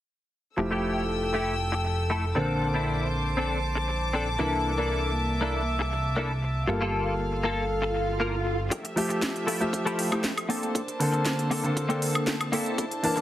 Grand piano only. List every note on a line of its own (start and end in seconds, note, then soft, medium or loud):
0.57 2.32 F3 medium
0.57 2.33 A3 medium
0.57 2.33 E4 medium
0.57 2.34 G4 medium
2.35 4.36 D3 medium
2.35 4.36 A#3 medium
2.35 4.37 C4 medium
2.35 4.37 A4 medium
4.39 6.65 E3 medium
4.39 6.65 A#3 medium
4.39 6.66 D4 medium
4.39 6.66 A4 medium
6.67 8.68 G3 medium
6.67 8.69 A#3 medium
6.67 8.69 F4 medium
6.67 8.69 A4 medium
8.96 9.57 F3 medium
8.96 9.58 A3 medium
8.96 9.58 G4 medium
8.96 9.58 E5 medium
9.60 10.08 F3 medium
9.60 10.09 A3 medium
9.60 10.09 G4 loud
9.60 10.09 E5 medium
10.11 10.21 F3 medium
10.11 10.21 A3 medium
10.11 10.21 E4 medium
10.11 10.22 G4 loud
11.00 11.61 D3 medium
11.00 11.61 A#3 medium
11.00 11.62 C4 medium
11.00 11.62 A4 loud
11.64 12.51 D3 medium
11.64 12.52 A#3 medium
11.64 12.52 C4 medium
11.64 12.52 A4 medium
13.03 13.21 E3 medium
13.03 13.21 A#3 medium
13.03 13.21 D4 medium
13.03 13.21 A5 loud